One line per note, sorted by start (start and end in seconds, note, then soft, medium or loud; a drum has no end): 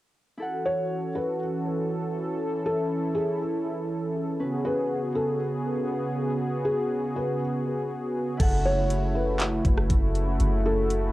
0.38 4.36 E3 medium
0.38 4.36 C#4 medium
0.38 4.36 E4 medium
0.38 2.38 F#4 medium
0.38 4.36 A4 medium
0.42 8.36 F#5 medium
0.66 1.12 C#5 medium
1.15 1.39 B4 medium
2.40 4.38 E4 medium
2.66 3.12 A4 medium
3.15 3.39 G#4 medium
4.39 8.36 C#3 medium
4.39 8.36 B3 medium
4.39 8.36 C#4 medium
4.39 8.36 F#4 medium
4.39 8.36 G#4 medium
4.39 8.36 B4 medium
4.65 5.12 B4 medium
5.15 5.39 A4 medium
6.65 7.12 G#4 medium
7.16 7.39 B4 medium
8.37 9.61 F#1 loud
8.37 11.12 C#3 medium
8.37 11.12 A3 medium
8.37 11.12 E4 medium
8.37 11.12 F#4 medium
8.37 11.12 A4 medium
8.37 kick loud
8.37 closed hi-hat medium
8.37 crash medium
8.42 11.12 F#5 medium
8.65 9.12 C#5 medium
8.90 closed hi-hat medium
9.15 9.39 B4 medium
9.40 clap loud
9.40 closed hi-hat medium
9.65 9.89 F#1 loud
9.65 kick loud
9.65 closed hi-hat medium
9.78 cross-stick loud
9.90 10.38 F#1 loud
9.90 kick loud
9.90 closed hi-hat medium
10.15 closed hi-hat medium
10.40 11.12 F#1 loud
10.40 closed hi-hat medium
10.66 11.12 A4 medium
10.90 closed hi-hat medium